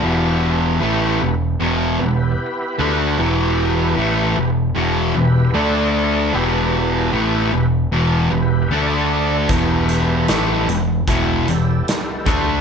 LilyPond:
<<
  \new Staff \with { instrumentName = "Tonewheel organ" } { \time 4/4 \key e \minor \tempo 4 = 76 <b e' g' b'>4. r4 <b e' g' b'>4~ <b e' g' b'>16 r16 | <b e' g' b'>4. r4 <b e' g' b'>8 <a d' a' d''>4 | <b e' g' b'>4. r4 <b e' g' b'>8 <a d' a' d''>4 | <b e' g' b'>4. r4 <b e' g' a'>4~ <b e' g' a'>16 r16 | }
  \new Staff \with { instrumentName = "Distorted electric guitar" } { \clef bass \time 4/4 \key e \minor <e, b, e>4 <a, e a>8 <e, b,>8 <e, b, e>8 <e, b,>8 r8 <d a d'>8 | <e, b, e>4 <a, e a>8 <e, b,>8 <e, b, e>8 <e, b,>8 <d a d'>4 | <e, b, e>4 <a, e a>8 <e, b,>8 <e, b, e>8 <e, b,>8 <d a d'>4 | <e, b, e>4 <a, e a>8 <e, b,>8 <e, b, e>8 <e, b,>8 r8 <d a d'>8 | }
  \new Staff \with { instrumentName = "Picked electric bass" } { \clef bass \time 4/4 \key e \minor e,,4 a,,8 e,,8 e,,8 e,,8 r8 d,8 | e,,4 a,,8 e,,8 e,,8 e,,8 d,4 | e,,4 a,,8 e,,8 e,,8 e,,8 d,4 | e,,4 a,,8 e,,8 e,,8 e,,8 r8 d,8 | }
  \new DrumStaff \with { instrumentName = "Drums" } \drummode { \time 4/4 r4 r4 r4 r4 | r4 r4 r4 r4 | r4 r4 r4 r4 | <hh bd>8 hh8 <hh sn>8 hh8 <hh bd>8 hh8 <hh sn>8 <hh bd>8 | }
>>